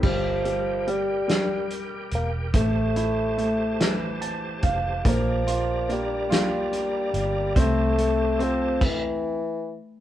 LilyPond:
<<
  \new Staff \with { instrumentName = "Tonewheel organ" } { \time 6/8 \key f \major \tempo 4. = 48 << { <bes' g''>2. | <c'' a''>2. | <d'' bes''>2. | <c'' a''>4. r4. | } \\ { g'2.~ | g'2.~ | g'2.~ | g'4. r4. | } >> }
  \new Staff \with { instrumentName = "Grand piano" } { \time 6/8 \key f \major r2. | r2 a''8 f''8 | r2. | r2. | }
  \new Staff \with { instrumentName = "Grand piano" } { \time 6/8 \key f \major g8 g8 g8 g4. | a8 e'8 a8 e4. | bes8 f'8 bes8 f'4. | c'8 a'8 c'8 r4. | }
  \new Staff \with { instrumentName = "Steel-string acoustic guitar" } { \time 6/8 \key f \major r2. | r2. | bes8 bes8 d'8 bes8 f'8 bes8 | a8 a8 c'8 r4. | }
  \new Staff \with { instrumentName = "Bassoon" } { \clef bass \time 6/8 \key f \major f4 g4 r8 bes8 | a2 r4 | f4 g2 | a4 f8 e4 r8 | }
  \new Staff \with { instrumentName = "Fingered electric bass" } { \clef bass \time 6/8 \key f \major g,,2~ g,,8 e,,8 | a,,2~ a,,8 f,,8 | bes,,2~ bes,,8 g,,8 | c,4. r4. | }
  \new DrumStaff \with { instrumentName = "Drums" } \drummode { \time 6/8 <cymc bd>8 hh8 hh8 <hh sn>8 hh8 hh8 | <hh bd>8 hh8 hh8 <hh sn>8 hh8 <hh bd>8 | <hh bd>8 hh8 hh8 <hh sn>8 hh8 hh8 | <hh bd>8 hh8 hh8 <cymc bd>4. | }
>>